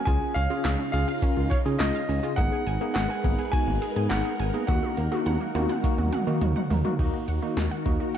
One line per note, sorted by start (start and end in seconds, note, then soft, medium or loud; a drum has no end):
0.00 2.34 C#4 medium
0.05 0.18 C#2 loud
0.05 2.36 C#3 medium
0.05 0.33 C#4 medium
0.05 2.36 D#4 medium
0.05 0.33 F4 medium
0.05 0.17 F4 loud
0.05 2.36 F4 medium
0.05 0.33 G#4 medium
0.05 0.36 G#5 loud
0.05 kick loud
0.05 closed hi-hat medium
0.34 0.47 C#2 loud
0.34 0.46 C#4 medium
0.34 0.89 F5 loud
0.34 closed hi-hat medium
0.50 0.76 C#4 medium
0.50 0.76 F4 medium
0.50 0.60 F4 medium
0.50 0.76 G#4 medium
0.50 closed hi-hat medium
0.65 0.76 C#2 loud
0.65 0.75 F5 loud
0.65 snare loud
0.65 clap medium
0.65 closed hi-hat medium
0.79 0.89 C#4 medium
0.92 1.05 C#2 loud
0.92 1.11 C#4 medium
0.92 1.11 F4 medium
0.92 1.03 F4 medium
0.92 1.11 G#4 medium
0.92 1.52 F5 loud
0.92 closed hi-hat medium
1.08 1.18 F5 medium
1.08 closed hi-hat medium
1.22 1.48 C#4 medium
1.22 1.32 C#4 medium
1.22 1.48 F4 medium
1.22 1.48 A#4 medium
1.22 kick medium
1.22 closed hi-hat medium
1.37 1.48 C#2 loud
1.37 1.47 F4 medium
1.50 1.57 C#5 medium
1.50 1.61 F5 medium
1.50 kick medium
1.50 closed hi-hat medium
1.66 1.77 C#3 medium
1.66 2.00 C#4 medium
1.66 1.75 C#4 medium
1.66 2.00 F4 medium
1.66 2.00 G#4 medium
1.66 closed hi-hat medium
1.79 1.91 C#2 loud
1.79 1.90 F4 medium
1.79 2.39 D#5 medium
1.79 snare loud
1.79 clap medium
1.79 closed hi-hat medium
1.95 2.04 F5 medium
2.09 2.20 C#2 loud
2.09 2.19 C#4 medium
2.09 open hi-hat medium
2.23 2.32 C#4 medium
2.23 2.32 F4 medium
2.23 2.33 F4 medium
2.23 2.32 G#4 medium
2.23 closed hi-hat medium
2.36 2.49 G#1 loud
2.36 4.66 G#3 medium
2.36 2.47 A#3 loud
2.36 2.64 B3 medium
2.36 6.95 D#4 medium
2.36 2.64 D#4 medium
2.36 2.64 G#4 medium
2.36 6.95 A#4 medium
2.36 4.66 B4 medium
2.36 2.91 F#5 loud
2.36 kick loud
2.36 closed hi-hat medium
2.52 2.62 G#4 medium
2.67 2.78 G#1 loud
2.67 2.76 G#5 medium
2.67 closed hi-hat medium
2.81 2.91 A#3 medium
2.81 3.07 B3 medium
2.81 3.07 D#4 medium
2.81 3.07 G#4 medium
2.81 closed hi-hat medium
2.94 3.07 G#1 loud
2.94 3.05 G#4 medium
2.94 3.48 F#5 loud
2.94 snare loud
2.94 clap medium
2.94 closed hi-hat medium
3.10 3.20 G#5 medium
3.24 3.36 G#1 medium
3.24 3.34 A#3 medium
3.24 3.41 B3 medium
3.24 3.41 D#4 medium
3.24 3.41 G#4 medium
3.24 kick loud
3.24 closed hi-hat medium
3.39 3.48 G#4 medium
3.39 closed hi-hat medium
3.52 3.79 B3 medium
3.52 3.79 D#4 medium
3.52 3.79 F#4 medium
3.52 4.06 G#5 loud
3.52 3.63 G#5 loud
3.52 kick medium
3.52 closed hi-hat medium
3.67 3.79 G#1 loud
3.67 3.77 A#3 medium
3.82 3.92 G#4 medium
3.82 closed hi-hat medium
3.96 4.08 G#2 loud
3.96 4.31 B3 medium
3.96 4.31 D#4 medium
3.96 4.31 G#4 medium
3.96 4.06 G#5 medium
3.96 closed hi-hat medium
4.09 4.22 G#1 loud
4.09 4.20 A#3 medium
4.09 4.66 F#5 medium
4.09 snare loud
4.09 clap loud
4.09 closed hi-hat medium
4.25 4.35 G#4 medium
4.39 4.51 G#1 loud
4.39 4.49 G#5 medium
4.39 open hi-hat medium
4.54 4.64 A#3 medium
4.54 4.63 B3 medium
4.54 4.63 D#4 medium
4.54 4.63 G#4 medium
4.54 closed hi-hat medium
4.67 4.80 D#2 loud
4.67 6.97 D#3 medium
4.67 4.94 A#3 medium
4.67 4.94 D#4 medium
4.67 4.78 F#4 loud
4.67 4.94 F#4 medium
4.67 6.97 F#4 medium
4.67 6.37 F#5 medium
4.67 kick loud
4.67 closed hi-hat medium
4.67 high tom medium
4.83 high tom medium
4.97 5.09 D#2 loud
4.97 5.07 A#3 medium
4.97 closed hi-hat medium
5.12 5.38 A#3 medium
5.12 5.38 D#4 medium
5.12 5.21 F#4 medium
5.12 5.38 F#4 medium
5.12 closed hi-hat medium
5.12 high tom medium
5.26 5.38 D#2 loud
5.26 5.36 F#5 loud
5.26 closed hi-hat medium
5.26 mid tom medium
5.41 5.50 A#3 medium
5.55 5.66 D#2 medium
5.55 5.72 A#3 medium
5.55 5.72 D#4 medium
5.55 5.65 F#4 medium
5.55 5.72 F#4 loud
5.55 closed hi-hat medium
5.55 mid tom medium
5.69 5.79 F#5 medium
5.69 closed hi-hat medium
5.69 mid tom medium
5.84 5.94 A#3 medium
5.84 6.10 A#3 medium
5.84 6.10 D#4 medium
5.84 6.10 F#4 loud
5.84 kick medium
5.84 closed hi-hat medium
5.98 6.10 D#2 loud
5.98 6.08 F#4 medium
5.98 mid tom medium
6.13 6.22 F#5 medium
6.13 closed hi-hat medium
6.13 mid tom loud
6.27 6.39 D#3 loud
6.27 6.37 A#3 medium
6.27 6.62 A#3 medium
6.27 6.62 D#4 medium
6.27 6.61 F#4 loud
6.27 closed hi-hat medium
6.41 6.53 D#2 loud
6.41 6.51 F#4 medium
6.41 closed hi-hat medium
6.41 floor tom loud
6.56 6.66 F#5 medium
6.56 floor tom medium
6.70 6.82 D#2 loud
6.70 6.80 A#3 medium
6.70 floor tom loud
6.70 open hi-hat medium
6.85 6.93 A#3 medium
6.85 6.93 D#4 medium
6.85 6.94 F#4 medium
6.85 6.93 F#4 loud
6.85 closed hi-hat medium
6.85 floor tom medium
6.99 7.11 D#2 loud
6.99 8.18 D#3 medium
6.99 7.25 A#3 medium
6.99 7.09 D#4 medium
6.99 8.18 D#4 medium
6.99 7.25 D#4 medium
6.99 8.18 F#4 medium
6.99 7.25 F#4 loud
6.99 8.18 A#4 medium
6.99 kick loud
6.99 closed hi-hat medium
6.99 crash medium
7.14 7.23 F#4 medium
7.28 7.40 D#2 loud
7.28 7.38 F#5 medium
7.28 closed hi-hat medium
7.42 7.68 A#3 medium
7.42 7.52 D#4 medium
7.42 7.68 D#4 medium
7.42 7.68 F#4 loud
7.57 7.68 D#2 loud
7.57 snare loud
7.57 closed hi-hat medium
7.71 7.81 F#5 medium
7.86 7.97 D#2 medium
7.86 8.18 A#3 medium
7.86 7.95 D#4 medium
7.86 8.18 D#4 medium
7.86 8.18 F#4 medium
7.86 kick medium
7.86 closed hi-hat medium
8.00 8.10 F#4 medium
8.15 8.18 F#5 loud
8.15 closed hi-hat medium